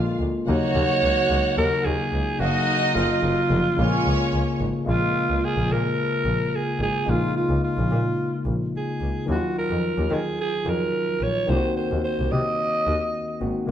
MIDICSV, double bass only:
0, 0, Header, 1, 2, 480
1, 0, Start_track
1, 0, Key_signature, -5, "minor"
1, 0, Tempo, 550459
1, 414, Time_signature, 4, 2, 24, 8
1, 11958, End_track
2, 0, Start_track
2, 0, Title_t, "Double bass"
2, 0, Program_c, 0, 43
2, 170, Note_on_c, 0, 38, 82
2, 240, Note_off_c, 0, 38, 0
2, 416, Note_on_c, 0, 39, 110
2, 486, Note_off_c, 0, 39, 0
2, 652, Note_on_c, 0, 39, 106
2, 722, Note_off_c, 0, 39, 0
2, 893, Note_on_c, 0, 37, 94
2, 963, Note_off_c, 0, 37, 0
2, 1133, Note_on_c, 0, 37, 92
2, 1202, Note_off_c, 0, 37, 0
2, 1373, Note_on_c, 0, 39, 105
2, 1443, Note_off_c, 0, 39, 0
2, 1617, Note_on_c, 0, 39, 97
2, 1686, Note_off_c, 0, 39, 0
2, 1849, Note_on_c, 0, 37, 84
2, 1919, Note_off_c, 0, 37, 0
2, 2095, Note_on_c, 0, 30, 90
2, 2165, Note_off_c, 0, 30, 0
2, 2580, Note_on_c, 0, 30, 108
2, 2650, Note_off_c, 0, 30, 0
2, 2818, Note_on_c, 0, 30, 89
2, 2887, Note_off_c, 0, 30, 0
2, 3056, Note_on_c, 0, 29, 101
2, 3126, Note_off_c, 0, 29, 0
2, 3295, Note_on_c, 0, 34, 109
2, 3364, Note_off_c, 0, 34, 0
2, 3534, Note_on_c, 0, 37, 98
2, 3604, Note_off_c, 0, 37, 0
2, 3777, Note_on_c, 0, 37, 83
2, 3847, Note_off_c, 0, 37, 0
2, 4016, Note_on_c, 0, 32, 85
2, 4086, Note_off_c, 0, 32, 0
2, 4252, Note_on_c, 0, 34, 99
2, 4321, Note_off_c, 0, 34, 0
2, 4617, Note_on_c, 0, 37, 82
2, 4687, Note_off_c, 0, 37, 0
2, 4853, Note_on_c, 0, 34, 80
2, 4923, Note_off_c, 0, 34, 0
2, 4973, Note_on_c, 0, 46, 105
2, 5043, Note_off_c, 0, 46, 0
2, 5447, Note_on_c, 0, 34, 85
2, 5517, Note_off_c, 0, 34, 0
2, 5924, Note_on_c, 0, 32, 82
2, 5994, Note_off_c, 0, 32, 0
2, 6171, Note_on_c, 0, 34, 90
2, 6241, Note_off_c, 0, 34, 0
2, 6532, Note_on_c, 0, 37, 90
2, 6602, Note_off_c, 0, 37, 0
2, 6777, Note_on_c, 0, 34, 94
2, 6847, Note_off_c, 0, 34, 0
2, 6896, Note_on_c, 0, 46, 103
2, 6966, Note_off_c, 0, 46, 0
2, 7373, Note_on_c, 0, 34, 85
2, 7442, Note_off_c, 0, 34, 0
2, 7854, Note_on_c, 0, 37, 72
2, 7924, Note_off_c, 0, 37, 0
2, 8097, Note_on_c, 0, 39, 96
2, 8166, Note_off_c, 0, 39, 0
2, 8461, Note_on_c, 0, 41, 82
2, 8531, Note_off_c, 0, 41, 0
2, 8698, Note_on_c, 0, 39, 91
2, 8768, Note_off_c, 0, 39, 0
2, 8805, Note_on_c, 0, 51, 107
2, 8875, Note_off_c, 0, 51, 0
2, 9291, Note_on_c, 0, 41, 85
2, 9360, Note_off_c, 0, 41, 0
2, 9772, Note_on_c, 0, 34, 72
2, 9841, Note_off_c, 0, 34, 0
2, 10017, Note_on_c, 0, 36, 111
2, 10087, Note_off_c, 0, 36, 0
2, 10382, Note_on_c, 0, 39, 86
2, 10452, Note_off_c, 0, 39, 0
2, 10625, Note_on_c, 0, 36, 83
2, 10695, Note_off_c, 0, 36, 0
2, 10739, Note_on_c, 0, 48, 104
2, 10809, Note_off_c, 0, 48, 0
2, 11221, Note_on_c, 0, 39, 94
2, 11290, Note_off_c, 0, 39, 0
2, 11701, Note_on_c, 0, 32, 77
2, 11771, Note_off_c, 0, 32, 0
2, 11958, End_track
0, 0, End_of_file